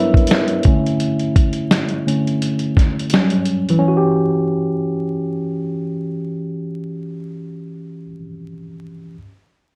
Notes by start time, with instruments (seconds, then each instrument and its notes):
Already playing: tine electric piano F#3 G3 B3 C#4 D4 E4 A#4 B4 C#5 E5
0.14 kick, closed hi-hat
0.27 closed hi-hat
0.31 snare
0.48 closed hi-hat
0.63 tine electric piano D3 A3 C#4, kick, closed hi-hat
0.86 closed hi-hat
1.00 closed hi-hat
1.19 closed hi-hat
1.36 kick, closed hi-hat
1.53 closed hi-hat
1.71 snare, closed hi-hat
1.89 closed hi-hat
2.07 tine electric piano D3 A3 C#4, closed hi-hat
2.27 closed hi-hat
2.42 closed hi-hat
2.59 closed hi-hat
2.77 kick, snare, closed hi-hat
2.99 closed hi-hat
3.10 tine electric piano F#3 G3, closed hi-hat
3.14 tine electric piano C#4, snare
3.30 closed hi-hat
3.45 closed hi-hat
3.69 tine electric piano E3, closed hi-hat
3.79 tine electric piano C#4
3.88 tine electric piano F#4
3.97 tine electric piano G4